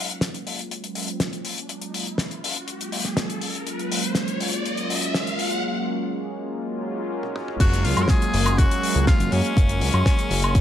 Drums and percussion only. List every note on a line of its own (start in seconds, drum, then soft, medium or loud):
0.10 closed hi-hat medium
0.21 snare loud
0.21 closed hi-hat medium
0.34 closed hi-hat medium
0.47 open hi-hat loud
0.59 closed hi-hat soft
0.71 closed hi-hat medium
0.84 closed hi-hat medium
0.95 open hi-hat loud
1.08 closed hi-hat medium
1.20 snare loud
1.20 closed hi-hat medium
1.33 closed hi-hat soft
1.45 open hi-hat loud
1.58 closed hi-hat medium
1.69 closed hi-hat medium
1.82 closed hi-hat medium
1.94 open hi-hat loud
2.06 closed hi-hat medium
2.18 snare loud
2.18 closed hi-hat medium
2.31 closed hi-hat medium
2.44 open hi-hat loud
2.56 closed hi-hat medium
2.68 closed hi-hat medium
2.81 closed hi-hat medium
2.92 open hi-hat loud
3.05 snare soft
3.05 closed hi-hat medium
3.17 snare loud
3.17 closed hi-hat medium
3.30 closed hi-hat medium
3.41 open hi-hat loud
3.55 closed hi-hat medium
3.67 closed hi-hat medium
3.79 closed hi-hat soft
3.92 open hi-hat loud
4.04 closed hi-hat medium
4.15 snare loud
4.15 closed hi-hat medium
4.28 closed hi-hat medium
4.40 open hi-hat loud
4.53 closed hi-hat medium
4.65 closed hi-hat medium
4.77 closed hi-hat soft
4.90 open hi-hat loud
5.02 closed hi-hat medium
5.14 snare loud
5.14 closed hi-hat medium
5.27 closed hi-hat medium
5.39 open hi-hat loud
5.50 closed hi-hat medium
7.23 high tom soft
7.36 mid tom medium
7.48 mid tom medium
7.60 kick loud
7.60 closed hi-hat medium
7.60 crash loud
7.73 closed hi-hat medium
7.85 open hi-hat loud
7.97 closed hi-hat medium
7.97 high woodblock medium
8.08 kick loud
8.08 snare loud
8.08 closed hi-hat medium
8.22 closed hi-hat medium
8.34 open hi-hat loud
8.46 closed hi-hat medium
8.46 high woodblock medium
8.58 kick loud
8.58 closed hi-hat medium
8.71 closed hi-hat medium
8.83 open hi-hat loud
8.96 closed hi-hat medium
9.07 kick loud
9.07 snare loud
9.07 closed hi-hat medium
9.20 closed hi-hat medium
9.32 open hi-hat loud
9.45 closed hi-hat medium
9.57 kick loud
9.57 closed hi-hat medium
9.69 closed hi-hat medium
9.81 open hi-hat loud
9.93 closed hi-hat medium
9.93 high woodblock medium
10.06 kick loud
10.06 snare loud
10.06 closed hi-hat medium
10.19 closed hi-hat medium
10.31 open hi-hat loud
10.43 closed hi-hat medium
10.43 high woodblock medium
10.55 kick loud
10.55 closed hi-hat medium